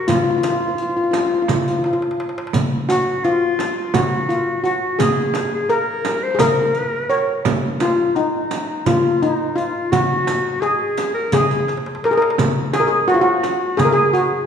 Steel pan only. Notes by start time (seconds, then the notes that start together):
Already playing: A#4
0.08 F4
0.15 F4
0.24 F4
0.30 F4
0.38 F4
0.44 F4
0.52 F4
0.60 F4
0.68 F4
0.75 F4
0.83 F4
0.90 F4
0.97 F4
1.04 F4
1.11 F4
1.19 F4
1.27 F4
1.34 F4
1.42 F4
1.48 F4
1.55 F4
1.63 F4
1.70 F4
1.79 F4
1.86 F4
1.93 F4
2.89 F#4
3.25 F4
3.94 F#4
4.29 F4
4.64 F#4
4.99 G#4
5.69 A#4
6.35 G#4
6.40 A#4
7.10 C#5
7.81 F4
8.16 D#4
8.87 F4
9.22 D#4
9.56 F4
9.92 F#4
10.62 G#4
11.34 G#4
12.05 A#4
12.11 G#4
12.17 A#4
12.73 G#4
12.80 A#4
12.87 G#4
13.08 F#4
13.14 F4
13.21 F#4
13.77 G#4
13.85 A#4
13.93 G#4
14.13 F#4